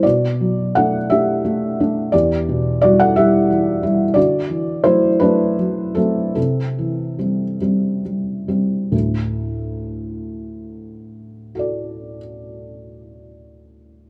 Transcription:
<<
  \new Staff \with { instrumentName = "Felt piano" } { \time 6/8 \key d \mixolydian \tempo 4. = 50 <fis' d''>4 <a' fis''>8 <g' e''>4. | <g' d''>4 <fis' d''>16 <a' fis''>16 <g' e''>4 r8 | <fis' d''>4 <e' c''>8 <d' b'>4 <c' a'>8 | <c' a'>4. r4. |
r2. | <fis' a' d''>2. | }
  \new Staff \with { instrumentName = "Felt piano" } { \clef bass \time 6/8 \key d \mixolydian b,8 fis8 <a d'>8 <a d'>8 a8 <a d'>8 | e,8 b,8 <g e'>8 <g e'>8 e8 <g e'>8 | d8 e8 <fis a>8 <fis a>8 fis8 <fis a>8 | c8 e8 <g c'>8 <g c'>8 g8 <g c'>8 |
<d, a,>2.~ | <d, a,>2. | }
>>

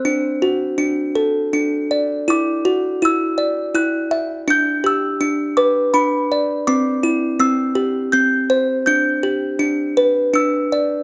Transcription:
\new Staff \with { instrumentName = "Music box" } { \time 3/4 \key g \major \tempo 4 = 82 << { fis'''2 r4 | d'''4 e'''4 fis'''4 | g'''8 e'''4 d'''8 b''8. r16 | d'''4 e'''4 g'''4 |
g'''2 e'''4 | } \\ { d'8 fis'8 d'8 a'8 d'8 d''8 | e'8 fis'8 e'8 d''8 e'8 e''8 | d'8 g'8 d'8 b'8 d'8 d''8 | c'8 e'8 c'8 g'8 c'8 c''8 |
d'8 g'8 d'8 b'8 d'8 d''8 | } >> }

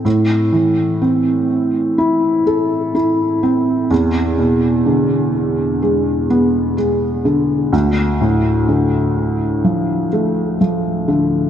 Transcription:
\new Staff \with { instrumentName = "Felt piano" } { \clef bass \time 4/4 \key a \minor \tempo 4 = 62 a,8 e8 c'4 e'8 a'8 e'8 c'8 | e,8 b,8 d4 gis8 b8 gis8 d8 | d,8 a,8 d4 f8 a8 f8 d8 | }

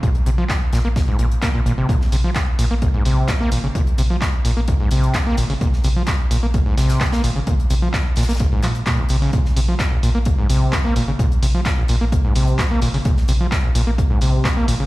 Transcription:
<<
  \new Staff \with { instrumentName = "Acid bass" } { \clef bass \time 4/4 \key bes \minor \tempo 4 = 129 bes,16 r16 c16 f16 r8 bes,16 bes16 bes,,16 aes,16 bes,16 r16 bes16 bes,16 bes,16 c16 | bes,16 r16 c16 f16 r8 bes,16 bes16 bes,,16 aes,16 c8 bes,16 bes16 bes,16 des16 | bes,16 r16 c16 f16 r8 bes,16 bes16 bes,,16 aes,16 c8 bes,16 bes16 bes,16 des16 | bes,16 r16 c16 f16 r8 bes,16 bes16 bes,,16 aes,16 c8 bes,16 bes16 bes,16 des16 |
bes,16 r16 c16 f16 r8 bes,16 bes16 bes,,16 aes,16 f16 r16 bes,16 bes,,16 c16 des16 | bes,16 r16 c16 f16 r16 bes,,16 bes,16 bes16 r16 aes,16 c8 bes,16 bes16 bes,16 des16 | bes,16 r16 c16 f16 r16 bes,,16 bes,16 bes16 r16 aes,16 c8 bes,16 bes16 bes,16 des16 | bes,16 r16 c16 f16 r16 bes,,16 bes,16 bes16 r16 aes,16 c8 bes,16 bes16 bes,16 des16 | }
  \new Staff \with { instrumentName = "Sub bass" } { \clef bass \time 4/4 \key bes \minor r8 bes,,8 r8 bes,,16 bes,,8 r16 bes,,8 r8 aes,,8 | r8 bes,,8 r8 bes,,16 bes,,8 r16 bes,,8 r8 aes,,8 | r8 bes,,8 r8 bes,,16 bes,,8 r16 bes,,8 r8 aes,,8 | r8 bes,,8 r8 bes,,16 bes,,8 r16 bes,,8 r8 aes,,8 |
r8 bes,,8 r8 bes,,16 bes,,8 r16 bes,8 r8 bes,,8 | r8 bes,,8 r8 bes,,16 bes,,8 r16 bes,,8 r8 aes,,8 | r8 bes,,8 r8 bes,,16 bes,,8 r16 bes,,8 r8 aes,,8 | r8 bes,,8 r8 bes,,16 bes,,8 r16 bes,,8 r8 aes,,8 | }
  \new DrumStaff \with { instrumentName = "Drums" } \drummode { \time 4/4 <hh bd>16 hh16 hh8 <hc hh bd sn>8 <hh sn>8 <hh bd sn>8 hh16 hh16 <hc hh bd sn>8 hh8 | <hh bd>16 sn16 <hh hho>8 <hc hh bd sn>8 <hh hho>8 <hh bd>8 <hh hho>8 <hc hh bd sn>8 <hh hho>8 | <hh bd>16 hh16 <hh hho>8 <hc hh bd sn>8 <hh hho>8 <hh bd>8 <hh hho>16 hh16 <hc hh bd sn>8 <hh hho>16 hho16 | <hh bd>16 sn16 <hh hho>8 <hc hh bd sn>8 <hh hho>8 <hh bd>8 <hh hho sn>16 <hh sn>16 <hc hh bd sn>16 <hh sn>16 <hh hho>8 |
<hh bd>16 hh16 <hh hho>8 <hc hh bd sn>8 <hh hho sn>32 <hh sn>32 <hh sn>32 <hh sn>32 <hh bd>8 <hc hh hho>16 hh16 <hc hh bd sn>8 <hh hho>16 hho16 | <hh bd>16 sn16 <hh hho>8 <hc hh bd sn>8 <hh hho>8 <hh bd>8 <hh hho>8 <hc hh bd sn>8 <hh hho>8 | <hh bd>16 hh16 <hh hho>8 <hc hh bd sn>8 <hh hho>8 <hh bd>8 <hh hho>16 hh16 <hc hh bd sn>8 <hh hho>16 hho16 | <hh bd>16 sn16 <hh hho>8 <hc hh bd sn>8 <hh hho>8 <hh bd>8 <hh hho>8 <hc hh bd sn>8 <hh hho>8 | }
>>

